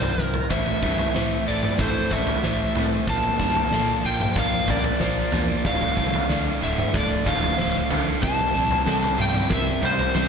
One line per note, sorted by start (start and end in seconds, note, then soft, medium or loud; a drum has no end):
0.00 0.50 C4 medium
0.00 0.14 E4 medium
0.00 0.17 E4 medium
0.00 0.47 E4 medium
0.00 0.50 G4 medium
0.00 0.47 A#4 medium
0.00 0.23 C5 medium
0.00 0.47 C5 medium
0.00 0.51 C5 medium
0.00 0.51 D5 medium
0.00 0.47 G5 medium
0.00 floor tom medium
0.00 mid tom medium
0.18 0.40 C2 medium
0.18 0.50 E4 medium
0.18 snare medium
0.23 0.51 A#4 medium
0.34 floor tom medium
0.50 0.72 A1 medium
0.50 0.82 A2 medium
0.50 2.11 A2 medium
0.50 0.82 E3 medium
0.50 0.83 A3 medium
0.50 3.05 E4 medium
0.50 5.61 C5 medium
0.50 1.13 C5 medium
0.50 1.50 E5 medium
0.50 8.18 A5 medium
0.50 kick medium
0.50 snare soft
0.50 floor tom medium
0.50 crash loud
0.66 floor tom medium
0.82 1.03 G2 medium
0.82 1.13 A2 medium
0.82 1.14 E3 medium
0.82 1.15 A3 medium
0.82 2.44 C4 medium
0.82 kick medium
0.82 floor tom medium
0.98 floor tom medium
1.14 1.46 A2 medium
1.14 1.37 A2 medium
1.14 1.46 E3 medium
1.14 2.43 A3 soft
1.14 1.47 A3 medium
1.14 1.79 C5 medium
1.14 snare soft
1.47 1.69 A1 medium
1.47 1.78 A2 medium
1.47 1.79 E3 medium
1.47 1.80 A3 medium
1.47 2.09 E4 medium
1.47 1.77 D5 medium
1.63 mid tom medium
1.79 2.00 A1 medium
1.79 2.10 A2 medium
1.79 2.11 E3 medium
1.79 2.12 A3 medium
1.79 3.10 A4 medium
1.79 2.44 A4 medium
1.79 2.13 C5 medium
1.79 kick loud
1.79 snare soft
1.79 floor tom medium
2.11 2.32 A1 medium
2.11 2.42 A2 medium
2.11 2.43 E3 medium
2.11 2.44 A3 medium
2.11 3.08 E4 medium
2.11 3.05 E5 medium
2.11 kick medium
2.11 floor tom medium
2.27 floor tom medium
2.43 2.64 A1 medium
2.43 2.75 A2 medium
2.43 2.75 E3 medium
2.43 3.10 A3 medium
2.43 2.77 A3 medium
2.43 3.08 C5 medium
2.43 snare medium
2.75 2.96 A2 medium
2.75 3.06 A2 medium
2.75 3.06 E3 medium
2.75 3.09 A3 medium
2.75 3.08 C4 medium
2.75 floor tom medium
3.07 3.29 A#1 medium
3.07 4.69 A#2 medium
3.07 3.39 A#2 medium
3.07 3.40 F3 medium
3.07 5.62 A#3 medium
3.07 3.40 A#3 medium
3.07 5.62 F4 medium
3.07 3.72 A#4 medium
3.07 5.62 D5 medium
3.07 4.08 A5 medium
3.07 kick medium
3.07 snare medium
3.07 floor tom medium
3.23 floor tom medium
3.39 3.61 G2 medium
3.39 3.71 A#2 medium
3.39 3.72 F3 medium
3.39 3.72 A#3 medium
3.39 5.01 D4 medium
3.39 kick medium
3.39 floor tom medium
3.55 floor tom medium
3.71 4.03 A#2 medium
3.71 3.93 A#2 medium
3.71 4.04 F3 medium
3.71 4.99 A#3 medium
3.71 4.04 A#3 medium
3.71 4.37 A4 medium
3.71 snare soft
4.04 4.25 A#1 medium
4.04 4.35 A#2 medium
4.04 4.36 F3 medium
4.04 4.36 A#3 medium
4.04 4.67 F4 medium
4.04 4.38 G5 medium
4.20 mid tom medium
4.36 4.57 A#1 medium
4.36 4.68 A#2 medium
4.36 4.68 F3 medium
4.36 4.68 A#3 medium
4.36 5.65 A#4 medium
4.36 4.71 F5 medium
4.36 kick medium
4.36 snare medium
4.36 floor tom medium
4.68 4.89 A#1 medium
4.68 4.99 A#2 medium
4.68 5.00 F3 medium
4.68 5.00 A#3 medium
4.68 5.65 F4 medium
4.68 5.69 D5 medium
4.68 kick medium
4.68 floor tom medium
4.84 floor tom medium
5.00 5.22 A#1 medium
5.00 5.31 A#2 medium
5.00 5.32 F3 medium
5.00 5.65 A#3 medium
5.00 5.32 A#3 medium
5.00 5.65 C5 medium
5.00 snare medium
5.32 5.54 E2 medium
5.32 5.63 A#2 medium
5.32 5.63 F3 medium
5.32 5.64 A#3 medium
5.32 5.65 D4 medium
5.32 floor tom medium
5.64 5.86 D1 medium
5.64 7.26 D2 medium
5.64 5.96 D2 medium
5.64 5.97 A2 medium
5.64 5.97 D3 medium
5.64 10.28 D4 medium
5.64 8.20 F4 medium
5.64 6.28 D5 medium
5.64 6.58 F5 medium
5.64 kick loud
5.64 snare medium
5.64 floor tom medium
5.81 floor tom medium
5.97 6.18 C2 medium
5.97 6.28 D2 medium
5.97 6.29 A2 medium
5.97 7.58 D3 medium
5.97 6.29 D3 medium
5.97 kick medium
5.97 floor tom medium
6.14 floor tom medium
6.29 6.60 D2 medium
6.29 6.51 D2 medium
6.29 6.60 A2 medium
6.29 7.57 A2 medium
6.29 6.61 D3 medium
6.29 6.94 D5 medium
6.29 snare medium
6.61 6.83 D1 medium
6.61 6.92 D2 medium
6.61 6.93 A2 medium
6.61 6.93 D3 medium
6.61 7.25 A3 medium
6.61 6.96 E5 medium
6.78 mid tom medium
6.93 7.15 D1 medium
6.93 7.24 D2 medium
6.93 7.25 A2 medium
6.93 7.25 D3 medium
6.93 8.22 F4 medium
6.93 7.58 A4 medium
6.93 7.28 D5 medium
6.93 kick medium
6.93 snare medium
6.93 floor tom medium
7.26 7.47 D1 medium
7.26 7.57 D2 medium
7.26 7.57 A2 medium
7.26 7.57 D3 medium
7.26 8.22 A3 medium
7.26 8.26 F5 medium
7.26 kick medium
7.26 floor tom medium
7.43 floor tom medium
7.57 7.80 D1 medium
7.57 7.88 D2 medium
7.57 7.89 A2 medium
7.57 8.22 A2 medium
7.57 7.89 D3 medium
7.57 8.22 C5 medium
7.57 snare medium
7.90 8.20 D2 medium
7.90 8.12 D2 medium
7.90 8.21 A2 medium
7.90 8.22 D3 medium
7.90 8.21 D3 medium
7.90 floor tom medium
8.21 8.43 C2 medium
8.21 8.52 C3 medium
8.21 9.83 C3 medium
8.21 10.28 C3 medium
8.21 8.53 G3 medium
8.21 10.28 A#3 medium
8.21 8.54 C4 medium
8.21 10.28 C4 medium
8.21 10.28 E4 medium
8.21 8.86 A#4 medium
8.21 9.22 A5 medium
8.21 kick loud
8.21 snare medium
8.21 floor tom medium
8.39 floor tom medium
8.54 8.75 A#1 medium
8.54 8.84 C3 medium
8.54 8.85 G3 medium
8.54 8.86 C4 loud
8.54 10.15 E4 medium
8.71 floor tom medium
8.86 9.08 C2 medium
8.86 9.16 C3 medium
8.86 9.17 G3 medium
8.86 10.14 C4 medium
8.86 9.17 C4 medium
8.86 9.51 A4 medium
8.86 snare medium
9.03 floor tom medium
9.17 9.40 C2 medium
9.17 9.48 C3 medium
9.17 9.48 G3 medium
9.17 9.49 C4 medium
9.17 9.82 G4 medium
9.17 mid tom medium
9.21 9.53 G5 medium
9.35 mid tom medium
9.49 9.72 C2 medium
9.49 9.80 C3 medium
9.49 9.81 G3 medium
9.49 9.81 C4 medium
9.49 10.15 A#4 medium
9.49 10.28 C5 medium
9.49 9.85 E5 medium
9.49 kick loud
9.49 snare medium
9.49 floor tom medium
9.81 10.04 C2 medium
9.81 10.13 C3 medium
9.81 10.13 G3 medium
9.81 10.13 C4 medium
9.81 10.28 G4 medium
9.81 10.28 C5 medium
9.81 floor tom medium
9.99 floor tom medium
10.14 10.28 C2 medium
10.14 10.28 C3 medium
10.14 10.28 G3 medium
10.14 10.28 C4 medium
10.14 10.28 C5 medium
10.14 snare medium